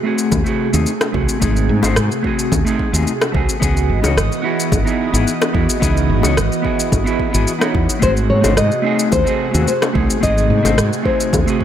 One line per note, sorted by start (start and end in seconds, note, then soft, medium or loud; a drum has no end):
0.00 3.58 C3 medium
0.00 3.58 A3 medium
0.00 0.42 A3 medium
0.00 11.64 F#4 medium
0.00 3.58 G#4 medium
0.04 0.43 C4 medium
0.04 0.44 F#4 medium
0.04 0.44 G#4 medium
0.18 shaker medium
0.32 0.44 D#2 medium
0.32 kick loud
0.32 high bongo medium
0.32 shaker soft
0.44 0.69 A3 medium
0.44 0.70 C4 medium
0.44 0.71 F#4 medium
0.44 shaker soft
0.48 0.71 G#4 medium
0.72 0.84 D#2 medium
0.72 0.91 A3 medium
0.72 0.91 C4 medium
0.72 0.91 D#4 medium
0.72 0.92 G#4 medium
0.72 shaker medium
0.86 shaker soft
1.01 cross-stick medium
1.01 high bongo loud
1.01 shaker soft
1.12 1.26 C2 medium
1.12 1.38 A3 medium
1.12 1.38 C4 medium
1.12 1.39 F#4 medium
1.12 kick loud
1.16 1.40 G#4 medium
1.29 shaker medium
1.40 1.71 G#1 medium
1.40 1.79 A3 medium
1.40 1.80 C4 medium
1.40 1.80 D#4 medium
1.40 1.81 G#4 medium
1.40 kick loud
1.40 shaker medium
1.56 shaker soft
1.69 1.81 G#2 medium
1.82 1.98 G#1 medium
1.82 1.93 A3 medium
1.82 1.94 C4 medium
1.82 1.94 D#4 medium
1.82 1.95 F#4 medium
1.82 1.95 C5 medium
1.82 high bongo medium
1.82 shaker medium
1.96 2.08 G#2 medium
1.96 cross-stick medium
1.96 shaker medium
2.12 shaker soft
2.23 2.62 A3 medium
2.23 2.63 C4 medium
2.23 2.64 F#4 medium
2.23 kick medium
2.27 2.64 G#4 medium
2.39 shaker medium
2.52 2.64 D#2 medium
2.52 kick loud
2.52 high bongo medium
2.52 shaker medium
2.65 2.90 A3 medium
2.65 2.90 C4 medium
2.65 2.91 D#4 medium
2.65 2.92 G#4 medium
2.65 shaker soft
2.79 kick medium
2.92 3.04 D#2 medium
2.92 3.10 A3 medium
2.92 3.11 C4 medium
2.92 3.12 D#4 medium
2.92 3.12 F#4 medium
2.92 3.12 G#4 medium
2.92 shaker medium
3.07 shaker soft
3.21 cross-stick medium
3.21 high bongo medium
3.21 shaker soft
3.32 3.46 C2 medium
3.32 3.58 A3 medium
3.32 3.58 C4 medium
3.32 3.59 F#4 medium
3.32 kick loud
3.36 3.60 G#4 medium
3.49 shaker medium
3.60 3.91 C#2 medium
3.60 7.98 E3 medium
3.60 3.99 B3 medium
3.60 7.98 B3 medium
3.60 3.62 D#4 medium
3.60 3.63 E4 medium
3.60 4.01 F#4 medium
3.60 7.98 D#5 medium
3.60 kick loud
3.60 shaker medium
3.64 4.02 G#4 medium
3.77 shaker soft
3.89 4.01 G#1 medium
4.02 4.18 C#2 medium
4.02 4.14 B3 medium
4.02 4.14 D#4 medium
4.02 4.05 E4 medium
4.02 4.15 F#4 medium
4.02 4.16 C#5 medium
4.02 high bongo loud
4.02 shaker medium
4.17 4.29 G#1 medium
4.17 cross-stick medium
4.17 shaker medium
4.32 shaker soft
4.42 4.82 B3 medium
4.42 4.83 E4 medium
4.42 4.83 F#4 medium
4.46 4.84 G#4 medium
4.60 shaker medium
4.72 4.84 G#1 medium
4.72 kick loud
4.72 high bongo medium
4.72 shaker medium
4.84 5.10 B3 medium
4.84 5.10 D#4 medium
4.84 5.10 E4 medium
4.84 5.11 G#4 loud
4.84 shaker soft
5.12 5.24 G#1 loud
5.12 5.31 B3 medium
5.12 5.31 D#4 medium
5.12 5.32 E4 medium
5.12 shaker medium
5.16 5.33 G#4 medium
5.27 shaker medium
5.42 cross-stick medium
5.42 high bongo medium
5.42 shaker soft
5.53 5.66 E2 medium
5.53 5.78 B3 medium
5.53 5.55 D#4 medium
5.53 5.79 E4 medium
5.53 5.80 F#4 medium
5.53 5.80 G#4 medium
5.53 kick loud
5.69 shaker medium
5.80 6.11 C#2 medium
5.80 6.20 B3 medium
5.80 6.20 D#4 medium
5.80 6.20 E4 medium
5.80 6.21 G#4 medium
5.80 kick loud
5.80 shaker medium
5.97 shaker soft
6.09 6.21 G#1 medium
6.22 6.39 C#2 medium
6.22 6.34 B3 medium
6.22 6.34 D#4 medium
6.22 6.26 E4 medium
6.22 6.35 F#4 medium
6.22 high bongo medium
6.22 shaker medium
6.26 6.36 C#5 medium
6.37 6.49 G#1 medium
6.37 cross-stick medium
6.37 shaker medium
6.52 shaker soft
6.62 7.02 B3 medium
6.62 6.65 D#4 medium
6.62 7.03 E4 medium
6.62 7.04 F#4 medium
6.62 7.04 G#4 medium
6.62 kick medium
6.80 shaker medium
6.92 7.04 G#1 medium
6.92 kick loud
6.92 high bongo medium
6.92 shaker medium
7.04 7.30 B3 medium
7.04 7.31 E4 medium
7.04 7.31 F#4 medium
7.04 shaker soft
7.08 7.32 G#4 medium
7.20 kick medium
7.31 7.45 G#1 medium
7.31 7.50 B3 medium
7.31 7.34 D#4 medium
7.31 7.51 E4 medium
7.31 7.52 F#4 medium
7.31 shaker medium
7.35 7.52 G#4 medium
7.47 shaker medium
7.59 7.98 B3 medium
7.59 7.98 D#4 medium
7.59 7.99 E4 medium
7.59 7.99 F#4 medium
7.59 cross-stick medium
7.59 high bongo medium
7.59 shaker soft
7.63 8.00 C#5 medium
7.75 7.86 E2 medium
7.75 kick loud
7.89 shaker medium
7.99 8.31 G#1 medium
7.99 11.64 C3 medium
7.99 8.39 A3 medium
7.99 11.64 A3 medium
7.99 8.40 C4 medium
7.99 8.41 F#4 medium
7.99 11.64 G#4 medium
7.99 8.41 G#4 medium
7.99 kick loud
7.99 shaker medium
8.03 8.11 C5 loud
8.17 shaker soft
8.30 8.42 G#2 medium
8.30 8.57 C#5 medium
8.41 8.59 G#1 medium
8.41 8.53 A3 medium
8.41 8.54 C4 medium
8.41 8.55 D#4 medium
8.41 8.55 F#4 medium
8.41 8.55 C5 medium
8.41 high bongo medium
8.41 shaker medium
8.57 8.69 G#2 medium
8.57 9.12 D#5 loud
8.57 cross-stick medium
8.57 shaker medium
8.72 shaker soft
8.82 9.22 A3 medium
8.82 9.23 C4 medium
8.82 9.23 D#4 medium
8.82 9.24 F#4 medium
8.86 9.24 G#4 loud
8.99 shaker medium
9.12 9.24 D#2 medium
9.12 9.67 C5 medium
9.12 kick loud
9.12 high bongo medium
9.12 shaker medium
9.24 9.49 A3 medium
9.24 9.50 C4 medium
9.24 9.51 F#4 medium
9.24 shaker soft
9.28 9.51 G#4 loud
9.51 9.65 D#2 medium
9.51 9.70 A3 medium
9.51 9.71 C4 medium
9.51 9.72 F#4 medium
9.51 9.72 G#4 medium
9.51 shaker medium
9.68 10.19 C5 medium
9.68 shaker medium
9.82 cross-stick medium
9.82 high bongo medium
9.82 shaker soft
9.93 10.07 C2 medium
9.93 10.18 A3 medium
9.93 10.19 C4 medium
9.93 10.19 D#4 medium
9.93 10.20 G#4 medium
9.93 kick loud
10.10 shaker medium
10.20 10.51 G#1 medium
10.20 10.60 A3 medium
10.20 10.60 C4 medium
10.20 10.61 D#4 medium
10.20 10.62 G#4 loud
10.20 11.05 D#5 loud
10.20 kick loud
10.20 shaker medium
10.38 shaker soft
10.50 10.62 G#2 medium
10.63 10.79 G#1 medium
10.63 10.74 A3 medium
10.63 10.75 C4 medium
10.63 10.75 D#4 medium
10.63 10.76 F#4 medium
10.63 10.76 C5 medium
10.63 high bongo medium
10.63 shaker medium
10.78 10.89 G#2 medium
10.78 cross-stick medium
10.78 shaker medium
10.93 shaker soft
11.03 11.43 A3 medium
11.03 11.43 C4 medium
11.03 11.44 D#4 medium
11.03 11.64 C5 medium
11.03 kick medium
11.07 11.45 G#4 medium
11.20 shaker medium
11.33 11.45 D#2 medium
11.33 kick loud
11.33 high bongo medium
11.33 shaker soft
11.46 11.64 A3 medium
11.46 11.64 C4 medium
11.46 11.64 F#4 medium
11.46 11.64 G#4 medium
11.46 shaker soft
11.61 kick medium